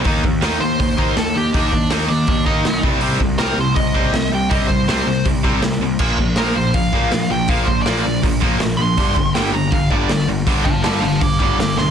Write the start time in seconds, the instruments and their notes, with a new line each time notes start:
0.04 picked electric bass D#2, overdriven electric guitar D#3 A#3 D#4, kick, open hi-hat
0.24 picked electric bass D#2, overdriven electric guitar D#3 A#3, kick
0.42 picked electric bass D#2, overdriven electric guitar D#3 A#3 D#4, snare, open hi-hat
0.60 picked electric bass D#2, overdriven electric guitar D#3 A#3, lead electric guitar C5
0.79 picked electric bass D#2, overdriven electric guitar D#3 A#3, kick, open hi-hat
0.97 picked electric bass D#2, overdriven electric guitar D#3 A#3 D#4, kick
1.17 picked electric bass D#2, overdriven electric guitar D#3 A#3, lead electric guitar A4, snare, open hi-hat
1.36 picked electric bass D#2, overdriven electric guitar D#3 A#3, lead electric guitar G4
1.54 picked electric bass D#2, overdriven electric guitar D#3 A#3 D#4, lead electric guitar D4, kick, open hi-hat
1.72 picked electric bass D#2, overdriven electric guitar D#3 A#3, kick
1.90 picked electric bass D#2, overdriven electric guitar D#3 A#3 D#4, snare, open hi-hat
2.08 picked electric bass D#2, overdriven electric guitar D#3 A#3, lead electric guitar D4
2.27 picked electric bass D#2, overdriven electric guitar D#3 A#3, kick, open hi-hat
2.46 picked electric bass D#2, overdriven electric guitar D#3 A#3 D#4, lead electric guitar D#4, kick
2.64 picked electric bass B1, overdriven electric guitar D#3 A#3, snare, open hi-hat
2.83 picked electric bass C2, overdriven electric guitar C3 G3 C4, kick
3.01 picked electric bass C2, overdriven electric guitar C3 G3 C4, open hi-hat
3.20 picked electric bass C2, overdriven electric guitar C3 G3, kick
3.38 picked electric bass C2, overdriven electric guitar C3 G3 C4, lead electric guitar A#4, snare, open hi-hat
3.56 picked electric bass C2, overdriven electric guitar C3 G3, lead electric guitar C5
3.76 picked electric bass C2, overdriven electric guitar C3 G3, lead electric guitar D#5, kick, open hi-hat
3.95 picked electric bass C2, overdriven electric guitar C3 G3 C4, kick
4.12 picked electric bass C2, overdriven electric guitar C3 G3, snare, open hi-hat
4.31 picked electric bass C2, overdriven electric guitar C3 G3, lead electric guitar G5
4.50 picked electric bass C2, overdriven electric guitar C3 G3 C4, lead electric guitar D#5, kick, open hi-hat
4.68 picked electric bass C2, overdriven electric guitar C3 G3, lead electric guitar C5, kick
4.88 picked electric bass C2, overdriven electric guitar C3 G3 C4, lead electric guitar C5, snare, open hi-hat
5.07 picked electric bass C2, overdriven electric guitar C3 G3
5.25 picked electric bass C2, overdriven electric guitar C3 G3, kick, open hi-hat
5.43 picked electric bass C2, overdriven electric guitar C3 G3 C4, kick
5.62 picked electric bass C2, overdriven electric guitar C3 G3, snare, open hi-hat
5.79 picked electric bass C2, overdriven electric guitar C3 G3
5.99 picked electric bass A#1, overdriven electric guitar A#2 F3 A#3, kick, crash
6.18 picked electric bass A#1, overdriven electric guitar A#2 F3, kick
6.36 picked electric bass A#1, overdriven electric guitar A#2 F3 A#3, lead electric guitar A#4, snare, open hi-hat
6.55 picked electric bass A#1, overdriven electric guitar A#2 F3, lead electric guitar C5
6.74 picked electric bass A#1, overdriven electric guitar A#2 F3, lead electric guitar F5, kick, open hi-hat
6.93 picked electric bass A#1, overdriven electric guitar A#2 F3 A#3, kick
7.12 picked electric bass A#1, overdriven electric guitar A#2 F3, snare, open hi-hat
7.30 picked electric bass A#1, overdriven electric guitar A#2 F3, lead electric guitar G5
7.48 picked electric bass A#1, overdriven electric guitar A#2 F3 A#3, lead electric guitar F5, kick, open hi-hat
7.65 picked electric bass A#1, overdriven electric guitar A#2 F3, lead electric guitar C5, kick
7.82 lead electric guitar D5, snare, open hi-hat
7.86 picked electric bass A#1, overdriven electric guitar A#2 F3 A#3
8.06 picked electric bass A#1, overdriven electric guitar A#2 F3
8.23 picked electric bass A#1, overdriven electric guitar A#2 F3, kick, open hi-hat
8.42 picked electric bass A#1, overdriven electric guitar A#2 F3 A#3, kick
8.60 picked electric bass A#1, overdriven electric guitar A#2 F3, snare, open hi-hat
8.77 picked electric bass A#1, overdriven electric guitar A#2 F3, lead electric guitar C6
8.97 picked electric bass G1, overdriven electric guitar G2 D3 G3, kick, open hi-hat
9.16 picked electric bass G1, overdriven electric guitar G2 D3, kick
9.34 picked electric bass G1, overdriven electric guitar G2 D3 G3, lead electric guitar G5, snare, open hi-hat
9.53 picked electric bass G1, overdriven electric guitar G2 D3, lead electric guitar A#5
9.71 picked electric bass G1, overdriven electric guitar G2 D3, lead electric guitar F5, kick, open hi-hat
9.90 picked electric bass G1, overdriven electric guitar G2 D3 G3, lead electric guitar D5, kick
10.09 picked electric bass G1, overdriven electric guitar G2 D3, snare, open hi-hat
10.28 picked electric bass G1, overdriven electric guitar G2 D3
10.47 picked electric bass G1, overdriven electric guitar G2 D3 G3, kick, open hi-hat
10.64 picked electric bass G1, overdriven electric guitar G2 D3, lead electric guitar F5 A5, kick
10.83 picked electric bass G1, overdriven electric guitar G2 D3 G3, lead electric guitar F5 A5, snare, open hi-hat
11.00 picked electric bass G1, overdriven electric guitar G2 D3, lead electric guitar F5 A5
11.06 distorted electric guitar D3
11.20 picked electric bass G1, overdriven electric guitar G2 D3, lead electric guitar F5 D6, kick, open hi-hat
11.39 picked electric bass G1, overdriven electric guitar G2 D3 G3, lead electric guitar F5 D6, kick
11.58 picked electric bass G1, overdriven electric guitar G2 D3, lead electric guitar F5 D6, snare, open hi-hat
11.77 picked electric bass B1, overdriven electric guitar G2 D3, lead electric guitar C6, snare